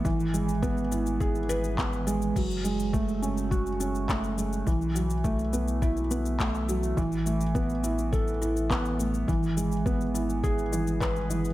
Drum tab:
CC |----------------|x---------------|----------------|----------------|
SH |xxxxxxxxxxxxxxxx|xxxxxxxxxxxxxxxx|xxxxxxxxxxxxxxxx|xxxxxxxxxxxxxxxx|
CP |------------x---|------------x---|------------x---|------------x---|
BD |o---o---o---o---|o---o---o---o---|o---o---o---o---|o---o---o---o---|

CC |----------------|
SH |xxxxxxxxxxxxxxxx|
CP |------------x---|
BD |o---o---o---o---|